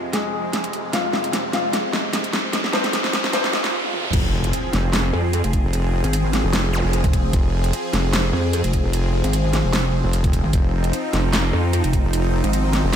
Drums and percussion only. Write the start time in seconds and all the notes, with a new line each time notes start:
0.13 snare, closed hi-hat
0.53 snare, closed hi-hat
0.64 closed hi-hat
0.73 closed hi-hat
0.93 snare, closed hi-hat
1.13 snare
1.24 closed hi-hat
1.33 snare, closed hi-hat
1.53 snare, closed hi-hat
1.73 snare, closed hi-hat
1.93 snare
2.13 snare, closed hi-hat
2.24 closed hi-hat
2.33 snare, closed hi-hat
2.53 snare, closed hi-hat
2.64 snare
2.73 snare
2.84 snare, closed hi-hat
2.93 snare, closed hi-hat
3.04 snare
3.13 snare, closed hi-hat
3.24 snare
3.33 snare, closed hi-hat
3.44 snare
3.53 snare
3.64 snare
3.84 high tom
3.93 mid tom
4.04 mid tom
4.13 kick, closed hi-hat, crash
4.44 closed hi-hat
4.53 closed hi-hat
4.73 snare, closed hi-hat
4.93 snare, closed hi-hat
5.33 closed hi-hat
5.44 closed hi-hat
5.53 kick, closed hi-hat
5.73 closed hi-hat
6.04 closed hi-hat
6.13 closed hi-hat
6.33 snare, closed hi-hat
6.53 snare, closed hi-hat
6.93 closed hi-hat
7.04 kick, closed hi-hat
7.13 kick, closed hi-hat
7.33 kick, closed hi-hat
7.64 closed hi-hat
7.73 closed hi-hat
7.93 snare, closed hi-hat
8.13 snare, closed hi-hat
8.53 closed hi-hat
8.64 closed hi-hat
8.73 kick, closed hi-hat
8.93 closed hi-hat
9.24 closed hi-hat
9.33 closed hi-hat
9.53 snare, closed hi-hat
9.73 snare, closed hi-hat
10.13 closed hi-hat
10.24 kick, closed hi-hat
10.33 kick, closed hi-hat
10.53 kick, closed hi-hat
10.84 closed hi-hat
10.93 closed hi-hat
11.13 snare, closed hi-hat
11.33 snare, clap, closed hi-hat
11.73 closed hi-hat
11.84 closed hi-hat
11.93 kick, closed hi-hat
12.13 closed hi-hat
12.44 closed hi-hat
12.53 closed hi-hat
12.73 snare, closed hi-hat